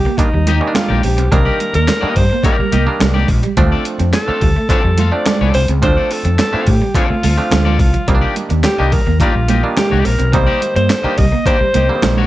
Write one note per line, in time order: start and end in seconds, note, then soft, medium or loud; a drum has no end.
0.00 0.20 G4 medium
0.04 0.11 A#3 soft
0.04 0.17 A#3 medium
0.04 0.11 D4 soft
0.04 muted clean electric guitar stroke medium
0.18 0.29 D#3 medium
0.18 0.29 G3 medium
0.18 0.29 A#3 medium
0.18 0.29 D4 medium
0.18 0.76 D#4 medium
0.18 muted fingered electric bass stroke soft
0.18 muted clean electric guitar stroke soft
0.18 kick medium
0.18 closed hi-hat loud
0.33 0.57 D#2 medium
0.33 0.45 G3 medium
0.33 muted clean electric guitar stroke soft
0.47 0.66 A#3 medium
0.47 0.59 A#3 medium
0.47 0.62 D#4 medium
0.47 0.61 G4 medium
0.47 0.61 D#5 medium
0.47 closed hi-hat medium
0.47 muted conga medium
0.61 1.15 D#3 medium
0.61 1.15 G3 medium
0.61 1.15 A#3 medium
0.61 0.67 C#4 medium
0.61 muted clean electric guitar stroke soft
0.67 1.18 D4 medium
0.74 1.03 F4 loud
0.74 muted clean electric guitar stroke medium
0.74 snare loud
0.74 clap medium
0.74 closed hi-hat medium
0.74 high conga loud
0.89 1.02 A#1 medium
0.89 1.02 A#3 medium
0.89 1.02 D#4 medium
0.89 1.03 G4 medium
0.89 1.03 D5 medium
0.89 high conga medium
1.03 1.19 A#1 medium
1.03 1.15 C4 medium
1.03 1.33 G4 medium
1.03 muted clean electric guitar stroke soft
1.03 open hi-hat medium
1.17 1.30 B1 medium
1.17 1.29 C4 medium
1.17 muted clean electric guitar stroke medium
1.17 closed hi-hat soft
1.32 1.44 C2 loud
1.32 1.86 D#3 loud
1.32 1.86 G3 medium
1.32 1.86 A#3 medium
1.32 1.43 C4 medium
1.32 1.86 D4 loud
1.32 1.74 A#4 loud
1.32 muted clean electric guitar stroke medium
1.32 kick loud
1.32 closed hi-hat medium
1.32 muted conga medium
1.45 1.58 A#3 medium
1.45 1.59 D#4 medium
1.45 1.59 G4 medium
1.45 1.60 D5 medium
1.59 muted clean electric guitar stroke soft
1.59 closed hi-hat medium
1.59 muted conga soft
1.74 1.86 D#2 medium
1.74 1.86 A#3 medium
1.74 2.18 A#4 loud
1.74 muted clean electric guitar stroke medium
1.74 closed hi-hat medium
1.87 muted clean electric guitar stroke soft
1.87 snare loud
1.87 clap medium
1.87 closed hi-hat loud
1.87 high conga medium
2.01 2.24 D#3 medium
2.01 2.24 G3 medium
2.01 2.24 A#3 medium
2.01 2.14 A#3 medium
2.01 2.24 D4 medium
2.01 2.15 D#4 medium
2.01 2.15 G4 medium
2.01 2.16 D#5 medium
2.01 muted fingered electric bass stroke soft
2.15 2.29 G2 medium
2.15 2.29 G3 medium
2.15 2.45 C5 loud
2.15 muted clean electric guitar stroke soft
2.15 kick medium
2.15 open hi-hat medium
2.30 2.37 A#3 soft
2.30 2.43 A#3 medium
2.30 2.37 D4 soft
2.30 muted clean electric guitar stroke medium
2.43 2.55 D#3 medium
2.43 2.55 G3 medium
2.43 2.63 A#3 medium
2.43 2.55 A#3 medium
2.43 2.58 D#4 medium
2.43 2.55 D#4 medium
2.43 2.57 G4 medium
2.43 3.25 A#4 loud
2.43 2.56 D5 loud
2.43 muted clean electric guitar stroke soft
2.43 kick loud
2.43 closed hi-hat medium
2.58 2.71 G3 medium
2.58 muted clean electric guitar stroke soft
2.58 muted fingered electric bass stroke soft
2.72 2.85 C2 medium
2.72 2.87 A#3 medium
2.72 2.85 A#3 medium
2.72 2.86 D#4 medium
2.72 2.86 G4 medium
2.72 2.86 D#5 medium
2.72 closed hi-hat medium
2.72 muted conga medium
2.86 3.41 D#3 medium
2.86 3.41 G3 medium
2.86 3.41 A#3 medium
2.86 3.41 D4 medium
2.86 muted clean electric guitar stroke soft
3.00 3.25 C2 medium
3.00 3.13 G3 medium
3.00 muted clean electric guitar stroke soft
3.00 snare loud
3.00 clap medium
3.00 closed hi-hat medium
3.00 high conga medium
3.14 3.28 A#3 medium
3.14 3.28 D#4 medium
3.14 3.29 G4 medium
3.14 3.29 D5 medium
3.14 high conga medium
3.28 3.41 A#1 medium
3.28 muted clean electric guitar stroke soft
3.28 kick medium
3.28 open hi-hat medium
3.43 3.55 G3 medium
3.43 muted clean electric guitar stroke soft
3.43 closed hi-hat soft
3.57 3.69 D2 loud
3.57 4.11 F3 loud
3.57 4.11 A3 loud
3.57 4.11 C4 loud
3.57 4.11 D4 loud
3.57 3.69 D4 medium
3.57 muted clean electric guitar stroke soft
3.57 kick loud
3.57 closed hi-hat medium
3.57 muted conga medium
3.72 3.84 C4 medium
3.72 3.85 F4 medium
3.72 3.85 A4 medium
3.72 3.85 D5 medium
3.85 muted clean electric guitar stroke soft
3.85 closed hi-hat medium
3.99 4.12 F2 medium
3.99 4.11 C4 medium
3.99 muted clean electric guitar stroke soft
3.99 closed hi-hat soft
4.13 4.66 A4 loud
4.13 muted clean electric guitar stroke soft
4.13 snare loud
4.13 clap medium
4.13 closed hi-hat loud
4.13 high conga medium
4.28 4.49 F3 medium
4.28 4.49 A3 medium
4.28 4.49 C4 medium
4.28 4.41 C4 medium
4.28 4.49 D4 medium
4.28 4.41 F4 medium
4.28 4.42 A4 medium
4.28 4.43 F5 medium
4.28 muted fingered electric bass stroke soft
4.41 4.54 D2 medium
4.41 4.54 G3 medium
4.41 muted clean electric guitar stroke soft
4.41 kick medium
4.41 open hi-hat medium
4.55 4.68 A3 medium
4.55 4.62 C4 soft
4.55 4.62 D4 soft
4.55 muted clean electric guitar stroke soft
4.69 4.80 F3 medium
4.69 4.80 A3 medium
4.69 4.80 C4 medium
4.69 4.90 C4 medium
4.69 4.81 D4 medium
4.69 4.84 F4 loud
4.69 5.09 A4 loud
4.69 4.84 A4 medium
4.69 4.83 D5 loud
4.69 muted fingered electric bass stroke soft
4.69 kick loud
4.69 closed hi-hat loud
4.84 5.08 F2 medium
4.84 4.96 G3 medium
4.84 muted clean electric guitar stroke soft
4.98 5.10 A3 medium
4.98 5.14 C4 medium
4.98 5.13 F4 medium
4.98 5.13 A4 medium
4.98 5.13 F5 medium
4.98 closed hi-hat medium
4.98 muted conga medium
5.12 5.66 F3 medium
5.12 5.66 A3 medium
5.12 5.66 C4 medium
5.12 5.66 D4 medium
5.12 5.51 D5 loud
5.12 muted clean electric guitar stroke soft
5.26 muted clean electric guitar stroke soft
5.26 snare loud
5.26 clap medium
5.26 closed hi-hat medium
5.26 high conga loud
5.41 5.53 C2 medium
5.41 5.53 C4 medium
5.41 5.54 F4 medium
5.41 5.54 A4 medium
5.41 5.55 D5 medium
5.41 high conga medium
5.54 5.67 C2 medium
5.54 5.66 C4 medium
5.54 5.67 C5 loud
5.54 muted clean electric guitar stroke soft
5.54 open hi-hat medium
5.68 5.83 C#2 loud
5.68 5.80 C4 medium
5.68 muted clean electric guitar stroke soft
5.68 closed hi-hat medium
5.82 5.95 D2 loud
5.82 6.37 F3 loud
5.82 6.37 A3 medium
5.82 6.37 C4 medium
5.82 5.94 D4 medium
5.82 6.37 D4 loud
5.82 6.14 C5 loud
5.82 muted clean electric guitar stroke soft
5.82 kick loud
5.82 closed hi-hat medium
5.82 muted conga medium
5.97 6.09 C4 medium
5.97 6.10 F4 medium
5.97 6.10 A4 medium
5.97 6.11 D5 medium
6.10 6.39 A4 medium
6.10 muted clean electric guitar stroke soft
6.10 open hi-hat medium
6.25 6.37 F2 medium
6.25 6.37 C4 medium
6.25 muted clean electric guitar stroke medium
6.25 closed hi-hat medium
6.38 6.71 A4 medium
6.38 muted clean electric guitar stroke soft
6.38 snare loud
6.38 clap medium
6.38 closed hi-hat loud
6.38 high conga medium
6.53 6.75 F3 medium
6.53 6.75 A3 medium
6.53 6.75 C4 medium
6.53 6.66 C4 medium
6.53 6.75 D4 medium
6.53 6.66 F4 medium
6.53 6.67 A4 medium
6.53 6.68 F5 medium
6.53 muted fingered electric bass stroke soft
6.67 6.79 A2 medium
6.67 6.79 A3 medium
6.67 6.98 G4 medium
6.67 muted clean electric guitar stroke soft
6.67 kick medium
6.67 open hi-hat medium
6.81 6.93 G3 medium
6.81 6.88 C4 soft
6.81 6.88 D4 soft
6.81 muted clean electric guitar stroke soft
6.95 7.06 F3 medium
6.95 7.06 A3 medium
6.95 7.06 C4 medium
6.95 7.15 C4 medium
6.95 7.06 D4 medium
6.95 7.10 F4 medium
6.95 7.80 F4 loud
6.95 7.09 A4 medium
6.95 7.08 D5 medium
6.95 muted clean electric guitar stroke soft
6.95 kick medium
6.95 closed hi-hat loud
7.09 7.21 A3 medium
7.09 7.16 C4 soft
7.09 7.16 D4 soft
7.09 muted clean electric guitar stroke soft
7.09 muted fingered electric bass stroke soft
7.23 7.36 D2 medium
7.23 7.35 A3 medium
7.23 7.38 C4 medium
7.23 7.37 F4 medium
7.23 7.36 A4 medium
7.23 7.36 F5 medium
7.23 open hi-hat medium
7.23 muted conga medium
7.37 7.92 F3 medium
7.37 7.92 A3 medium
7.37 7.92 C4 medium
7.37 7.92 D4 medium
7.37 muted clean electric guitar stroke soft
7.51 7.80 D2 loud
7.51 7.63 F3 medium
7.51 muted clean electric guitar stroke soft
7.51 snare loud
7.51 clap medium
7.51 closed hi-hat medium
7.51 high conga medium
7.65 7.78 C4 medium
7.65 7.79 F4 medium
7.65 7.79 A4 medium
7.65 7.80 D5 medium
7.65 high conga medium
7.79 7.92 C2 medium
7.79 8.34 F4 medium
7.79 muted clean electric guitar stroke soft
7.79 kick loud
7.79 open hi-hat medium
7.94 8.05 F3 medium
7.94 muted clean electric guitar stroke soft
7.94 closed hi-hat soft
8.07 8.20 C2 loud
8.07 8.62 D#3 medium
8.07 8.62 G3 medium
8.07 8.62 A#3 medium
8.07 8.19 C4 medium
8.07 8.15 C4 medium
8.07 muted clean electric guitar stroke soft
8.07 kick loud
8.07 closed hi-hat medium
8.07 muted conga medium
8.15 8.66 D4 loud
8.21 8.35 A#3 medium
8.21 8.35 D#4 medium
8.21 8.35 G4 medium
8.21 8.36 D5 medium
8.36 muted clean electric guitar stroke soft
8.36 closed hi-hat medium
8.36 muted conga soft
8.50 8.63 D#2 medium
8.50 8.62 A#3 medium
8.50 muted clean electric guitar stroke soft
8.50 closed hi-hat soft
8.64 8.94 G4 medium
8.64 muted clean electric guitar stroke soft
8.64 snare loud
8.64 clap loud
8.64 closed hi-hat medium
8.64 high conga medium
8.78 8.91 C2 medium
8.78 9.00 D#3 medium
8.78 9.00 G3 medium
8.78 9.01 A#3 medium
8.78 8.91 A#3 medium
8.78 9.01 D4 medium
8.78 8.92 D#4 medium
8.78 8.92 G4 medium
8.78 8.93 D#5 medium
8.92 9.04 G3 medium
8.92 9.20 A#4 medium
8.92 muted clean electric guitar stroke soft
8.92 kick medium
8.92 open hi-hat medium
9.06 9.19 D#2 loud
9.06 9.18 A#3 medium
9.06 9.14 A#3 soft
9.06 9.14 D4 soft
9.06 muted clean electric guitar stroke soft
9.20 9.32 D#3 medium
9.20 9.32 G3 medium
9.20 9.40 A#3 medium
9.20 9.32 A#3 medium
9.20 9.32 D4 medium
9.20 9.35 D#4 medium
9.20 9.73 F4 medium
9.20 9.35 G4 medium
9.20 9.34 D5 medium
9.20 muted fingered electric bass stroke soft
9.20 muted clean electric guitar stroke soft
9.20 kick medium
9.20 closed hi-hat medium
9.34 9.60 A#1 medium
9.34 9.46 G3 medium
9.34 9.42 A#3 soft
9.34 muted clean electric guitar stroke soft
9.48 9.60 A#3 medium
9.48 9.64 A#3 medium
9.48 9.64 D#4 medium
9.48 9.63 G4 medium
9.48 9.63 D#5 medium
9.48 closed hi-hat medium
9.48 muted conga medium
9.63 10.18 D#3 medium
9.63 10.17 G3 medium
9.63 10.18 A#3 medium
9.63 10.18 D4 medium
9.63 muted clean electric guitar stroke soft
9.77 10.06 G4 loud
9.77 muted clean electric guitar stroke soft
9.77 snare loud
9.77 clap medium
9.77 closed hi-hat medium
9.77 high conga loud
9.91 10.04 C2 medium
9.91 10.04 A#3 medium
9.91 10.04 D#4 medium
9.91 10.05 G4 medium
9.91 10.05 D5 medium
9.91 high conga medium
10.05 10.18 A#1 medium
10.05 10.17 C4 medium
10.05 10.35 A#4 loud
10.05 muted clean electric guitar stroke soft
10.05 open hi-hat medium
10.19 10.34 B1 medium
10.19 10.30 C4 medium
10.19 muted clean electric guitar stroke soft
10.19 closed hi-hat medium
10.32 10.46 C2 loud
10.32 10.88 D#3 medium
10.32 10.88 G3 medium
10.32 10.88 A#3 medium
10.32 10.44 C4 medium
10.32 10.88 D#4 loud
10.32 10.76 C5 loud
10.32 muted clean electric guitar stroke soft
10.32 kick loud
10.32 closed hi-hat medium
10.32 muted conga medium
10.47 10.60 A#3 medium
10.47 10.61 D#4 medium
10.47 10.61 G4 medium
10.47 10.62 D5 medium
10.61 muted clean electric guitar stroke soft
10.61 closed hi-hat medium
10.61 muted conga soft
10.76 10.88 G2 medium
10.76 10.87 A#3 medium
10.76 11.20 C5 loud
10.76 muted clean electric guitar stroke medium
10.76 closed hi-hat soft
10.90 muted clean electric guitar stroke soft
10.90 snare loud
10.90 clap loud
10.90 closed hi-hat medium
10.90 high conga medium
11.03 11.26 D#3 medium
11.03 11.26 G3 medium
11.03 11.26 A#3 medium
11.03 11.16 A#3 medium
11.03 11.26 D4 medium
11.03 11.17 D#4 medium
11.03 11.17 G4 medium
11.03 11.18 D#5 medium
11.03 muted fingered electric bass stroke soft
11.17 11.31 C2 medium
11.17 11.30 G3 medium
11.17 11.46 D#5 loud
11.17 muted clean electric guitar stroke soft
11.17 kick medium
11.17 open hi-hat medium
11.32 11.39 A#3 soft
11.32 11.44 A#3 medium
11.32 11.39 D4 soft
11.32 muted clean electric guitar stroke soft
11.46 11.57 D#3 medium
11.46 11.57 G3 medium
11.46 11.65 A#3 medium
11.46 11.57 A#3 medium
11.46 11.57 D4 medium
11.46 11.61 D#4 medium
11.46 11.60 G4 medium
11.46 12.27 C5 loud
11.46 11.59 D5 medium
11.46 kick medium
11.46 closed hi-hat loud
11.61 11.72 G3 medium
11.61 muted fingered electric bass stroke medium
11.61 muted clean electric guitar stroke soft
11.74 11.87 C2 medium
11.74 11.85 A#3 medium
11.74 11.90 A#3 medium
11.74 11.89 D#4 medium
11.74 11.88 G4 medium
11.74 11.89 D#5 medium
11.74 closed hi-hat medium
11.74 muted conga medium
11.89 11.95 D3 medium
11.89 12.27 G3 medium
11.89 12.27 A#3 medium
11.89 12.27 C4 medium
11.89 muted clean electric guitar stroke soft
11.95 12.27 D#3 medium
12.03 12.27 A#1 medium
12.03 12.14 G3 medium
12.03 muted clean electric guitar stroke soft
12.03 snare loud
12.03 clap medium
12.03 closed hi-hat medium
12.03 high conga medium
12.17 12.27 A#3 medium
12.17 12.27 D#4 medium
12.17 12.27 G4 medium
12.17 12.27 D5 medium
12.17 high conga medium